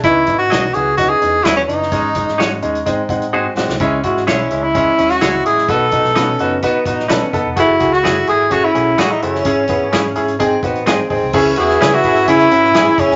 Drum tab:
CC |----------------|----------------|----------------|----------------|
HH |x-x-x-x-x-x-x-x-|x-x-x-xxx-xx----|x-x-x-x-x-xxx-x-|x-x-x-x-x-x-x-x-|
SD |----o-------o--o|---oo---------oo|---oo------oo--o|---oo------oo---|
BD |o-o-----o-------|o-o-----o-o-----|o-o-----o-------|o-o-----o-o---o-|

CC |----------------|----------------|x---------------|
HH |x-x-x-x-x-x-x-x-|x-x-x-xxx-xxx-o-|--x-x-xxxxx-x-x-|
SD |---oo-------o--o|----o-------o---|---oo------oo--o|
BD |o-o-----o-------|o-o-----o-o---o-|o-----o-o-----o-|